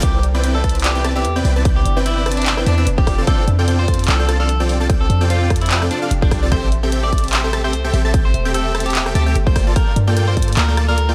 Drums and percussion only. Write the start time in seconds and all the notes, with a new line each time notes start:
0.03 kick, closed hi-hat
0.23 closed hi-hat
0.44 closed hi-hat
0.64 kick, closed hi-hat
0.69 closed hi-hat
0.75 closed hi-hat
0.80 closed hi-hat
0.84 clap, closed hi-hat
1.04 cross-stick, closed hi-hat
1.25 closed hi-hat
1.45 open hi-hat
1.65 kick, closed hi-hat
1.86 closed hi-hat
2.06 closed hi-hat
2.26 cross-stick, closed hi-hat
2.32 closed hi-hat
2.37 closed hi-hat
2.42 closed hi-hat
2.46 clap, closed hi-hat
2.57 cross-stick
2.66 closed hi-hat
2.87 closed hi-hat
2.98 kick
3.07 kick, cross-stick, open hi-hat
3.27 kick, closed hi-hat
3.48 closed hi-hat
3.68 closed hi-hat
3.88 kick, closed hi-hat
3.94 closed hi-hat
3.99 closed hi-hat
4.04 closed hi-hat
4.08 clap, closed hi-hat
4.29 cross-stick, closed hi-hat
4.49 closed hi-hat
4.69 open hi-hat
4.90 kick, closed hi-hat
5.10 closed hi-hat
5.30 closed hi-hat
5.50 kick, cross-stick, closed hi-hat
5.56 closed hi-hat
5.61 closed hi-hat
5.66 closed hi-hat
5.71 clap, closed hi-hat
5.82 cross-stick
5.91 closed hi-hat
6.11 closed hi-hat
6.22 kick
6.31 kick, cross-stick, open hi-hat
6.52 kick, closed hi-hat
6.72 closed hi-hat
6.92 closed hi-hat
7.13 kick, closed hi-hat
7.18 closed hi-hat
7.24 closed hi-hat
7.28 closed hi-hat
7.33 clap, closed hi-hat
7.53 cross-stick, closed hi-hat
7.73 closed hi-hat
7.94 open hi-hat
8.14 kick, closed hi-hat
8.34 closed hi-hat
8.54 closed hi-hat
8.75 cross-stick, closed hi-hat
8.80 closed hi-hat
8.86 closed hi-hat
8.90 closed hi-hat
8.95 clap, closed hi-hat
9.06 cross-stick
9.15 closed hi-hat
9.35 closed hi-hat
9.47 kick
9.56 kick, cross-stick, open hi-hat
9.76 kick, closed hi-hat
9.96 closed hi-hat
10.17 closed hi-hat
10.37 kick, closed hi-hat
10.42 closed hi-hat
10.48 closed hi-hat
10.53 closed hi-hat
10.57 clap, closed hi-hat
10.77 cross-stick, closed hi-hat
10.98 closed hi-hat